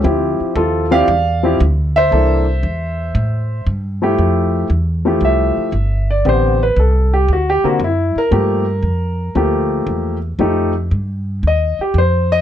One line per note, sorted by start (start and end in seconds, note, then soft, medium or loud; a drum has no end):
0.04 0.38 D2 medium
0.04 0.84 F3 medium
0.04 0.85 C4 soft
0.04 0.85 E4 medium
0.04 0.85 G4 medium
0.40 muted upright bass stroke soft
0.56 1.06 D#2 medium
0.56 0.90 F4 medium
0.56 0.89 A4 medium
0.91 1.06 F3 medium
0.91 1.06 C4 medium
0.91 1.06 E4 medium
0.91 1.07 G4 medium
0.91 1.57 D5 medium
0.91 1.56 F5 loud
1.08 1.58 E2 medium
1.43 1.58 F3 medium
1.43 1.58 C4 medium
1.43 1.58 E4 medium
1.43 1.59 G4 medium
1.60 2.10 D2 medium
1.96 3.64 C5 medium
1.96 3.63 E5 loud
2.11 2.62 C2 medium
2.11 2.43 E3 medium
2.11 2.43 A#3 soft
2.11 2.44 D4 medium
2.11 2.44 A4 medium
2.63 3.13 E2 medium
3.15 3.65 A2 medium
3.67 4.17 G2 medium
4.02 4.67 F3 medium
4.02 4.67 A3 medium
4.02 4.67 E4 medium
4.02 4.67 G4 medium
4.18 4.69 F2 medium
4.70 5.20 E2 medium
5.05 5.70 F3 medium
5.05 5.70 A3 medium
5.05 5.71 E4 medium
5.05 5.71 G4 medium
5.21 5.54 C2 medium
5.25 6.07 E5 medium
5.57 muted upright bass stroke soft
5.72 6.23 G1 medium
6.11 6.26 D5 medium
6.25 6.75 A1 medium
6.25 6.57 D3 medium
6.25 6.58 B3 medium
6.25 6.58 C4 soft
6.25 6.58 G4 medium
6.25 6.62 C5 medium
6.63 6.78 B4 medium
6.76 7.27 C2 medium
6.76 7.13 A4 medium
7.14 7.29 G4 medium
7.28 7.62 D2 medium
7.33 7.48 F#4 medium
7.50 7.65 G4 medium
7.64 7.79 D3 medium
7.64 7.79 A#3 medium
7.64 7.79 C4 medium
7.64 7.79 F#4 medium
7.64 muted upright bass stroke soft
7.80 8.13 F#2 medium
7.84 8.17 E4 medium
8.16 9.33 A#4 medium
8.16 muted upright bass stroke soft
8.31 8.82 G2 medium
8.31 8.64 F3 medium
8.31 8.64 A3 soft
8.31 8.64 A#3 soft
8.31 8.65 G4 medium
8.83 9.34 F2 medium
9.35 9.86 D2 medium
9.35 10.16 F3 medium
9.35 10.16 A3 soft
9.35 10.16 A#3 medium
9.35 10.17 G4 medium
9.87 10.37 E2 medium
10.39 10.89 F2 medium
10.39 10.72 F3 medium
10.39 10.72 A3 medium
10.39 10.72 D#4 medium
10.39 10.72 G4 medium
10.91 11.42 G2 medium
11.43 11.76 D#2 medium
11.47 11.80 D#5 medium
11.79 11.96 G4 medium
11.79 muted upright bass stroke soft
11.94 12.41 F2 medium
11.98 12.31 C5 medium
12.32 12.41 D#5 loud